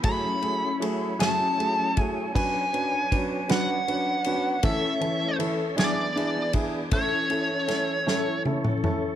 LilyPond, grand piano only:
\new Staff \with { instrumentName = "Grand piano" } { \time 6/8 \key a \major \tempo 4. = 52 <a fis' gis'>8 <a fis' gis'>8 <a fis' gis'>8 <a fis' gis'>8 <a fis' gis'>8 <a fis' gis'>8 | <fis cis' d' b'>8 <fis cis' d' b'>8 <fis cis' d' b'>8 <fis cis' d' b'>8 <fis cis' d' b'>8 <fis cis' d' b'>8 | <e cis' e' a'>8 <e cis' e' a'>8 <e cis' e' a'>8 <d' e' gis'>8 <d' e' gis'>8 <d' e' gis'>8 | <cis' e' a'>8 <cis' e' a'>8 <cis' e' a'>8 <cis' e' a'>8 <cis' e' a'>8 <cis' e' a'>8 | }